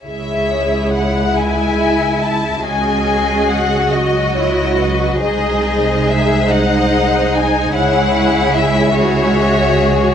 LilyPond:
<<
  \new Staff \with { instrumentName = "Violin section" } { \time 6/8 \key cis \minor \tempo 4. = 48 e''4 fis''8 gis''4 a''8 | gis''4 fis''8 dis''4. | dis''4 e''8 fis''4 gis''8 | fis''4 e''8 cis''4. | }
  \new Staff \with { instrumentName = "Violin section" } { \time 6/8 \key cis \minor << { cis''4. e''4. | dis''4. dis''8 cis''8 b'8 | bis'4. dis''4. | cis''4. e''4. | } \\ { e'2. | fis'2. | gis'4. bis'4. | gis'4. gis'4. | } >> }
  \new Staff \with { instrumentName = "Cello section" } { \time 6/8 \key cis \minor r4. e'4. | gis'4. fis'8 e'8 fis'8 | gis'4. dis'4. | e'4. fis'4. | }
  \new Staff \with { instrumentName = "Viola section" } { \time 6/8 \key cis \minor << { gis'4. e'4. | cis'4. fis'4. | dis'4. dis'4. | e'4. e'8 fis'8 gis'8 | } \\ { gis2. | gis4. fis4. | gis2. | gis2. | } >> }
  \new Staff \with { instrumentName = "Double bass section" } { \clef bass \time 6/8 \key cis \minor cis,2. | cis,2. | bis,,2. | cis,2. | }
>>